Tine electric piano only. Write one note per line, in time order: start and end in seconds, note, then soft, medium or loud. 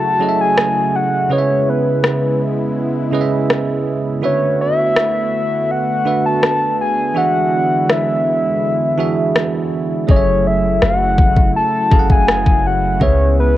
0.00 0.20 F#3 medium
0.00 0.20 C#4 medium
0.00 0.21 G#4 medium
0.00 0.21 A4 medium
0.00 0.29 E5 medium
0.20 1.14 F#3 medium
0.20 1.14 C#4 medium
0.20 1.15 G#4 medium
0.20 1.15 A4 medium
0.20 0.28 D#5 medium
0.29 1.19 E5 medium
1.29 2.55 C#3 medium
1.29 2.55 C#4 medium
1.29 2.56 G#4 medium
1.29 2.56 B4 medium
1.29 1.38 D#5 medium
1.38 2.60 E5 medium
3.12 4.07 C#3 medium
3.12 4.07 C#4 medium
3.12 4.07 G#4 medium
3.12 4.08 B4 medium
3.12 3.21 D#5 medium
3.21 4.11 E5 medium
4.22 5.47 D3 medium
4.22 5.48 D4 medium
4.22 5.48 F#4 medium
4.22 5.48 B4 medium
4.22 5.49 E5 medium
6.05 6.99 D3 medium
6.05 7.00 D4 medium
6.05 7.00 F#4 medium
6.05 7.00 B4 medium
6.05 7.01 E5 medium
7.14 8.40 E3 medium
7.14 8.40 D4 medium
7.14 8.41 F#4 medium
7.14 8.41 G#4 medium
7.14 8.41 E5 medium
8.97 9.92 E3 medium
8.97 9.92 D4 medium
8.97 9.93 F#4 medium
8.97 9.93 G#4 medium
8.97 9.93 E5 medium
10.07 11.33 F#3 medium
10.07 11.33 C#4 medium
10.07 11.34 G#4 medium
10.07 11.34 A4 medium
10.07 10.16 D#5 medium
10.16 11.38 E5 medium
11.90 12.85 F#3 medium
11.90 12.85 C#4 medium
11.90 12.85 G#4 medium
11.90 12.86 A4 medium
11.90 11.99 F5 medium
11.99 12.89 F#5 medium
13.00 13.57 C#3 medium
13.00 13.57 C#4 medium
13.00 13.57 G#4 medium
13.00 13.57 B4 medium
13.00 13.57 E5 medium